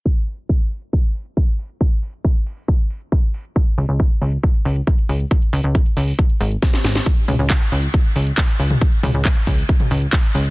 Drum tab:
HH |xxoxxxoxxxoxxxox|xxoxxxooxxoxxxox|xxoxxxo-xxo-xxox|xxoxxxooxxoxxxo-|
CP |----------------|----------------|----------------|----------------|
SD |----------------|----------------|----------------|------------oooo|
T2 |----------------|----------------|----------------|----------------|
BD |o---o---o---o---|o---o---o---o---|o---o---o---o---|o---o---o---o---|

HH |xxoxxxoxxxoxxxox|xxoxxxooxxoxxxox|
CP |----x-------x---|----x-------x---|
SD |----------------|----------------|
T2 |--o------------o|--o------o------|
BD |o---o---o---o---|o---o-o-o---o---|